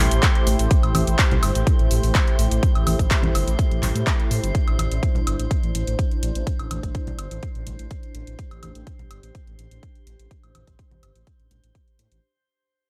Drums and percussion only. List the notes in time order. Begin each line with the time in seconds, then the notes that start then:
0.11 closed hi-hat, cabasa
0.23 kick, clap, closed hi-hat, cabasa
0.35 closed hi-hat
0.47 open hi-hat, cabasa
0.59 closed hi-hat, cabasa
0.71 kick, closed hi-hat, cabasa
0.83 closed hi-hat, high woodblock
0.95 open hi-hat, high conga, cabasa, high woodblock
1.07 closed hi-hat, cabasa
1.19 kick, clap, closed hi-hat, cabasa
1.31 closed hi-hat, low conga
1.43 open hi-hat, cabasa, high woodblock
1.55 closed hi-hat, cabasa
1.67 kick, closed hi-hat, cabasa
1.79 closed hi-hat
1.91 open hi-hat, cabasa
2.03 open hi-hat, cabasa
2.15 kick, clap, closed hi-hat, cabasa
2.28 closed hi-hat
2.39 open hi-hat, cabasa
2.51 closed hi-hat, cabasa
2.63 kick, closed hi-hat, cabasa
2.75 closed hi-hat, high woodblock
2.87 open hi-hat, high conga, cabasa, high woodblock
2.99 kick, closed hi-hat, cabasa
3.11 kick, clap, closed hi-hat, cabasa
3.23 closed hi-hat, high conga, low conga
3.35 open hi-hat, cabasa, high woodblock
3.48 closed hi-hat, cabasa
3.59 kick, closed hi-hat, cabasa
3.71 closed hi-hat
3.83 clap, open hi-hat, low conga, cabasa
3.96 closed hi-hat, cabasa
4.07 kick, clap, closed hi-hat, cabasa
4.20 closed hi-hat
4.31 open hi-hat, cabasa
4.44 closed hi-hat, cabasa
4.55 kick, closed hi-hat
4.68 closed hi-hat, high woodblock
4.79 closed hi-hat, high conga, high woodblock
4.92 closed hi-hat
5.03 kick, closed hi-hat
5.15 closed hi-hat, low conga
5.27 closed hi-hat, high woodblock
5.39 closed hi-hat
5.51 kick, closed hi-hat
5.63 closed hi-hat
5.75 closed hi-hat
5.87 closed hi-hat
5.99 kick, closed hi-hat
6.11 closed hi-hat
6.23 closed hi-hat
6.35 closed hi-hat
6.47 kick, closed hi-hat
6.59 closed hi-hat, high woodblock
6.71 closed hi-hat, high conga, high woodblock
6.83 kick, closed hi-hat
6.95 kick, closed hi-hat
7.07 closed hi-hat, low conga
7.19 closed hi-hat, high woodblock
7.31 closed hi-hat
7.43 kick, closed hi-hat
7.55 closed hi-hat
7.67 closed hi-hat, low conga
7.79 closed hi-hat
7.91 kick, closed hi-hat
8.03 closed hi-hat
8.15 closed hi-hat
8.27 closed hi-hat
8.39 kick, closed hi-hat
8.51 closed hi-hat, high woodblock
8.63 closed hi-hat, high conga, high woodblock
8.75 closed hi-hat
8.87 kick, closed hi-hat
8.99 closed hi-hat, low conga
9.11 closed hi-hat, high woodblock
9.23 closed hi-hat
9.35 kick, closed hi-hat
9.47 closed hi-hat
9.59 closed hi-hat
9.71 closed hi-hat
9.83 kick, closed hi-hat
9.95 closed hi-hat
10.07 closed hi-hat
10.20 closed hi-hat
10.31 kick, closed hi-hat
10.44 closed hi-hat, high woodblock
10.55 closed hi-hat, high conga, high woodblock
10.67 kick, closed hi-hat
10.79 kick, closed hi-hat
10.91 closed hi-hat, high conga, low conga
11.03 closed hi-hat, high woodblock
11.15 closed hi-hat
11.27 kick, closed hi-hat
11.40 closed hi-hat
11.51 closed hi-hat, low conga
11.64 closed hi-hat
11.75 kick, closed hi-hat
11.88 closed hi-hat
11.99 closed hi-hat
12.12 closed hi-hat